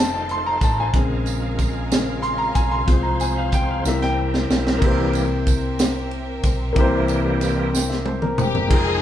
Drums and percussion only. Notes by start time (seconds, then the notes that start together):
0.29 closed hi-hat
0.61 kick, closed hi-hat, tambourine
0.93 kick, closed hi-hat
1.26 closed hi-hat, tambourine
1.58 kick, closed hi-hat, tambourine
1.91 snare, closed hi-hat, tambourine
2.23 closed hi-hat
2.55 kick, closed hi-hat, tambourine
2.88 kick, closed hi-hat
3.20 closed hi-hat, tambourine
3.52 kick, closed hi-hat, tambourine
3.85 snare, tambourine
4.01 snare
4.34 snare
4.50 snare, tambourine
4.67 snare
4.82 kick, crash
5.13 ride, tambourine
5.46 kick, ride, tambourine
5.79 snare, ride, tambourine
6.11 ride
6.43 kick, ride, tambourine
6.76 kick, ride
7.08 ride, tambourine
7.41 ride, tambourine
7.75 snare, tambourine
7.91 snare
8.06 high tom
8.22 mid tom
8.38 mid tom, tambourine
8.55 floor tom
8.71 kick, crash